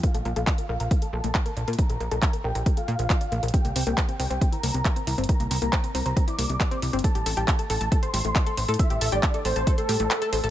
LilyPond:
<<
  \new Staff \with { instrumentName = "Supersaw synth" } { \time 4/4 \key c \mixolydian \tempo 4 = 137 f''8. f''8. f''8. a''4. r16 | bes''8. bes''8. g''8. f''4. r16 | g''8. g''8. g''8. bes''4. r16 | bes''8. bes''8. bes''8. d'''4. r16 |
a''8. a''8. a''8. c'''4. r16 | e''8. d''8. c''8. a'4. r16 | }
  \new Staff \with { instrumentName = "Synth arpeggio sound" } { \time 4/4 \key c \mixolydian bes'16 a'16 bes'16 a'16 bes''16 bes'16 bes'16 bes''16 bes'16 a'16 a'16 bes16 f''16 bes'16 d''16 bes'16 | bes'16 a'16 bes'16 a'16 bes''16 bes'16 bes'16 bes''16 bes'16 a'16 bes16 bes'16 f'16 d''16 bes16 bes'16 | c'16 bes16 c'16 bes16 c''16 c'16 c'16 c''16 c'16 e'16 bes16 c16 g'16 c'16 e'16 c'16 | c'16 bes16 c'16 bes16 r16 c'16 c'16 c''16 c'16 e'16 bes16 c16 g'16 c'16 e'16 c'16 |
a'16 g'16 a'16 g'16 a''16 a'16 a'16 a''16 a'16 c''16 g'16 a16 e''16 a'16 c''16 a'16 | a'16 g'16 a'16 g'16 a''16 a'16 a'16 a''16 a'16 c''16 g'16 a16 e''16 a'16 c''16 a'16 | }
  \new Staff \with { instrumentName = "Analog synth bass" } { \clef bass \time 4/4 \key c \mixolydian r16 bes,,16 bes,,16 bes,,16 r8 bes,,16 bes,,16 r8 bes,,16 bes,,16 r8 bes,,16 bes,16 | r16 bes,,16 bes,,16 bes,,16 r8 bes,,16 bes,,16 r8 bes,16 bes,,16 r8 bes,,16 bes,,16 | r16 c,16 c,16 c,16 r8 c,16 c,16 r8 c,16 c,16 r8 c,16 g,,16 | r16 c,16 c,16 c,16 r8 c,16 c,16 r8 c,16 c,16 r8 c,16 g,,16 |
r16 a,,16 a,,16 a,,16 r8 a,,16 a,,16 r8 a,,16 a,,16 r8 a,,16 a,16 | r16 a,,16 a,,16 a,,16 r8 a,,16 a,,16 r8 a,16 a,,16 r8 a,,16 a,,16 | }
  \new DrumStaff \with { instrumentName = "Drums" } \drummode { \time 4/4 <hh bd>16 hh16 hh16 hh16 <hc hh bd>16 hh8 hh16 <hh bd>16 hh8 hh16 <hc hh bd>16 hh16 hh16 hh32 hh32 | <hh bd>16 hh16 hh16 hh16 <hc hh bd>16 hh8 hh16 <hh bd>16 hh16 hh16 hh16 <hc hh bd>16 hh16 hh16 hh32 hh32 | <hh bd>16 hh16 hho16 hh16 <hc hh bd>16 hh16 hho16 hh16 <hh bd>16 hh16 hho16 hh16 <hc hh bd>16 hh16 hho16 hh32 hh32 | <hh bd>16 hh16 hho16 hh16 <hc hh bd>16 hh16 hho16 hh16 <hh bd>16 hh16 hho16 hh16 <hc hh bd>16 hh16 hho16 hh32 hh32 |
<hh bd>16 hh16 hho16 hh16 <hc hh bd>16 hh16 hho16 hh16 <hh bd>16 hh16 hho16 hh16 <hc hh bd>16 hh16 hho16 hh32 hh32 | <hh bd>16 hh16 hho16 hh16 <hc hh bd>16 hh16 hho16 hh16 <hh bd>16 hh16 hho16 hh16 <hc hh>16 hh16 hho16 hh16 | }
>>